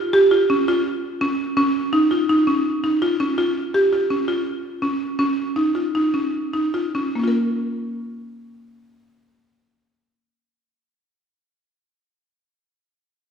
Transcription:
0.13 G4
0.31 F4
0.50 C#4
0.68 F4
1.21 C#4
1.57 C#4
1.93 D#4
2.11 F4
2.29 D#4
2.47 C#4
2.84 D#4
3.02 F4
3.20 C#4
3.38 F4
3.74 G4
3.93 F4
4.10 C#4
4.28 F4
4.82 C#4
5.19 C#4
5.56 D#4
5.75 F4
5.95 D#4
6.14 C#4
6.54 D#4
6.74 F4
6.95 C#4
7.15 A#3
7.20 C#4 F4
7.28 A#4

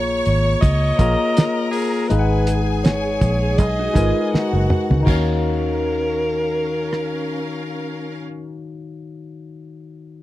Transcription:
Already playing: A#1 A#3 F4 G#4 C#5 A#5 C#6
0.26 G#1, closed hi-hat
0.61 C#2 D#5, kick, closed hi-hat
0.98 A#1 A#3 F4 G#4 A#4 C#5 A#5, kick, closed hi-hat
1.37 snare, closed hi-hat
1.71 G#4, open hi-hat
2.08 G#1 G#3 D#4 G#4 B4 F5 G#5, closed hi-hat
2.19 F#5
2.47 closed hi-hat
2.84 C#5, snare, closed hi-hat
3.21 A#1, kick, closed hi-hat
3.58 B1 D#5, kick, closed hi-hat
3.79 D#4 F#4
3.94 G#1 G#3 D#4 F4 G#4 A#4 B4 G#5, kick, closed hi-hat
4.33 F#4 A#4 F#5, muted fingered electric bass stroke, snare
4.53 F#1 D#4 F#4
4.70 mid tom
4.90 C#2, floor tom
5.00 D#3 D#4
5.06 D#2 C#4 F#4 A#4 C#5 F5, kick, crash
5.12 F5
6.93 cross-stick

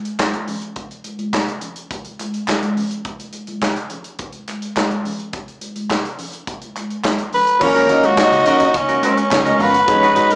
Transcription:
0.05 closed hi-hat
0.19 kick, snare, clap, muted conga, high conga
0.33 closed hi-hat, high conga
0.48 open hi-hat, low conga
0.62 closed hi-hat
0.76 kick, closed hi-hat
0.91 closed hi-hat
1.04 closed hi-hat, high conga
1.19 closed hi-hat, high conga
1.33 kick, snare, clap
1.48 closed hi-hat, muted conga
1.61 closed hi-hat, low conga
1.76 closed hi-hat
1.91 kick, closed hi-hat, muted conga
2.05 closed hi-hat, muted conga
2.19 clap, closed hi-hat, high conga
2.34 closed hi-hat
2.48 kick, snare, clap, muted conga, high conga
2.50 clap
2.63 closed hi-hat, muted conga, high conga
2.77 open hi-hat, low conga
2.91 closed hi-hat
3.05 kick, closed hi-hat
3.19 closed hi-hat, muted conga
3.33 closed hi-hat, high conga
3.47 closed hi-hat, high conga
3.62 kick, snare, clap, muted conga
3.76 closed hi-hat
3.90 closed hi-hat, low conga
4.04 closed hi-hat
4.19 kick, closed hi-hat
4.33 closed hi-hat, muted conga
4.48 clap, closed hi-hat, high conga
4.62 closed hi-hat
4.76 kick, snare, clap, muted conga, high conga
4.91 closed hi-hat, muted conga, high conga
5.05 open hi-hat, low conga
5.20 closed hi-hat
5.33 kick, closed hi-hat, muted conga
5.48 closed hi-hat
5.61 closed hi-hat, high conga
5.76 closed hi-hat, high conga
5.90 kick, snare, clap, muted conga
6.05 closed hi-hat
6.19 open hi-hat, low conga
6.33 closed hi-hat
6.47 kick, closed hi-hat, muted conga
6.62 closed hi-hat, muted conga
6.76 clap, closed hi-hat, high conga
6.90 closed hi-hat
7.04 kick, snare, clap, muted conga, high conga
7.18 closed hi-hat, muted conga, high conga
7.33 B4, open hi-hat, low conga
7.47 closed hi-hat
7.60 D#2 F#3 A#3 C#4 F4 A#4 C#5, muted clean electric guitar stroke, kick, crash, muted conga, low conga
7.75 C#4 F#4 A#4, closed hi-hat, muted conga
7.89 D#2 C#4 D#4 F#4 A#4 D#5, closed hi-hat
8.03 F#4, muted clean electric guitar stroke, closed hi-hat, high conga
8.17 D#4 F#4 D#5, kick, snare, clap, muted conga
8.31 C#2, muted clean electric guitar stroke, closed hi-hat, muted conga
8.46 C#4 F#4 A#4, closed hi-hat, low conga
8.60 D#2, muted clean electric guitar stroke, closed hi-hat
8.74 C#2 C#4, muted clean electric guitar stroke, kick, closed hi-hat
8.89 C#4 F#4 A#4, closed hi-hat, muted conga
9.03 C#4 F#4 A#4, clap, closed hi-hat, high conga
9.17 muted clean electric guitar stroke, closed hi-hat
9.31 C#2 C#4 C#5, muted clean electric guitar stroke, kick, snare, clap, high conga
9.33 clap
9.45 C#4 D#4 F#4 A#4 D#5, closed hi-hat, high conga
9.59 G1 C#4 F4 F#4 A#4 B4 F5, open hi-hat, low conga
9.73 F#4 F#5, muted clean electric guitar stroke, closed hi-hat
9.87 G#1 F#3 G#3 B3 C#4 D#4 C#5, muted clean electric guitar stroke, kick, closed hi-hat, low conga
10.02 D#4 F#4 B4, closed hi-hat
10.16 G#1 D#4 F#4 B4 D#5, closed hi-hat
10.30 muted clean electric guitar stroke, closed hi-hat, high conga

